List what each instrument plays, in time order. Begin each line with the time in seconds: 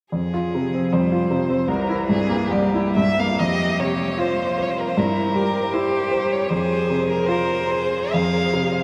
0.12 grand piano F2, cello F3, violin G#4
0.34 grand piano F4
0.55 grand piano C3
0.74 grand piano C4
0.93 grand piano F2, cello G3, violin C5
1.12 grand piano F4
1.29 grand piano C3, cello F3
1.49 grand piano C4
1.68 grand piano C2, cello E3, violin A#4
1.89 grand piano E4
2.08 grand piano G2, violin G#4
2.29 grand piano A#3
2.51 grand piano C2, cello G3, violin G4
2.74 grand piano E4
2.96 grand piano G2, violin E5
3.20 grand piano A#3, violin F5
3.40 grand piano F2, cello G4, violin D#5
3.80 grand piano C3, violin C#5
4.18 cello F4, grand piano F4, violin C5
4.58 grand piano C5
4.62 violin C#5
4.70 violin C5
4.80 violin A#4
4.88 violin C5
4.97 grand piano G2, cello E4, violin A#4
5.35 grand piano G3, cello G4
5.74 grand piano E4, violin C5
6.11 grand piano C5
6.32 violin C#5
6.50 grand piano F2, cello G#4, violin C5
6.90 grand piano C3
7.10 violin A#4
7.27 grand piano F4, cello A#4, violin C5
7.69 cello G#4, grand piano C5
8.13 grand piano F2, violin F5
8.54 grand piano C3